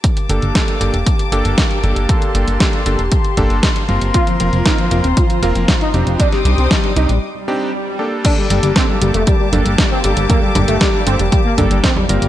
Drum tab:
CC |----------------|----------------|----------------|----------------|
HH |xxxxxxxxxxxxxxxx|xxxxxxxxxxxxxxxx|xxxxxxxxxxxxxxxx|xxxxxxxx--------|
SD |----o-------o---|----o-------o---|----o-------o---|-o--o-----------|
CG |----------------|----------------|----------------|----------------|
BD |o---o---o---o---|o---o---o-o-o---|o---o---o---o---|o---o-----------|

CC |x---------------|----------------|
HH |x-xxx-xxx-xxx-xx|x-xxx-xxx-xxx-xx|
SD |----o-------o---|----o-------o---|
CG |----------o-----|o-o-------o--o--|
BD |o---o---o---o---|o---o---o-o-o---|